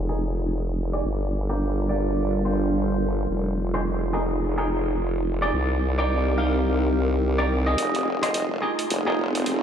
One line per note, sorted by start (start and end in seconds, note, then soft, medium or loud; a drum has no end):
0.00 1.03 F1 medium
0.00 1.03 D#4 medium
0.00 1.03 F4 medium
0.00 1.03 G#4 medium
0.00 impact medium
0.09 0.19 D#4 medium
0.09 0.19 G4 medium
0.09 0.19 G#4 medium
0.09 0.19 A#4 medium
0.93 1.04 D#4 medium
0.93 1.04 G4 medium
0.93 1.04 G#4 medium
0.93 1.04 D5 medium
1.05 3.27 G1 medium
1.05 3.28 G3 medium
1.05 3.28 D4 medium
1.05 3.27 F4 medium
1.05 3.28 A#4 medium
1.50 1.87 D4 medium
1.50 1.87 F4 medium
1.50 1.87 G4 medium
1.50 1.87 A#4 medium
1.89 2.43 D4 medium
1.89 2.43 F4 medium
1.89 2.43 G4 medium
1.89 2.43 D5 medium
2.45 3.28 D4 medium
2.45 3.28 F4 medium
2.45 3.28 G4 medium
2.45 3.28 C5 medium
3.30 5.52 F1 medium
3.30 5.52 D#4 medium
3.30 5.52 F4 medium
3.30 5.52 G#4 medium
3.74 3.80 D#4 medium
3.74 3.80 G4 medium
3.74 3.81 G#4 medium
3.74 3.81 C5 loud
4.13 4.23 D#4 medium
4.13 4.23 G4 medium
4.13 4.23 G#4 medium
4.13 4.23 A#4 medium
4.58 4.68 D#4 medium
4.58 4.68 G4 medium
4.58 4.68 G#4 medium
4.58 4.68 A#4 medium
5.42 5.52 D#4 medium
5.42 5.52 G4 medium
5.42 5.52 G#4 medium
5.42 5.52 D5 medium
5.54 7.76 C2 medium
5.54 7.76 C4 medium
5.54 7.76 D#4 medium
5.54 7.76 G4 medium
5.54 7.76 A#4 medium
5.98 6.35 D#4 medium
5.98 6.35 G4 medium
5.98 6.35 A#4 medium
5.98 6.35 D5 medium
6.38 6.91 D#4 medium
6.38 6.91 G4 medium
6.38 6.91 A#4 medium
6.38 6.92 F5 medium
7.38 7.49 D#4 medium
7.38 7.49 G4 medium
7.38 7.49 A#4 medium
7.38 7.49 D5 medium
7.67 8.06 D#4 medium
7.67 8.06 G4 medium
7.67 8.06 G#4 medium
7.67 8.06 D#5 medium
7.78 8.60 F1 medium
7.78 9.63 D#4 medium
7.78 9.63 F4 medium
7.78 9.63 G#4 medium
7.78 closed hi-hat medium
7.78 riser medium
7.95 closed hi-hat soft
8.23 8.29 D#4 medium
8.23 8.29 G4 medium
8.23 8.29 G#4 medium
8.23 8.29 C5 loud
8.23 8.30 D#5 medium
8.23 closed hi-hat medium
8.34 8.45 D#5 medium
8.34 closed hi-hat medium
8.62 8.71 D#4 medium
8.62 8.71 G4 medium
8.62 8.71 G#4 medium
8.62 8.71 A#4 medium
8.79 closed hi-hat medium
8.90 9.45 F1 loud
8.90 closed hi-hat medium
9.07 9.17 D#4 medium
9.07 9.17 G4 medium
9.07 9.17 G#4 medium
9.07 9.17 A#4 medium
9.35 closed hi-hat medium
9.46 9.63 F1 loud
9.46 closed hi-hat medium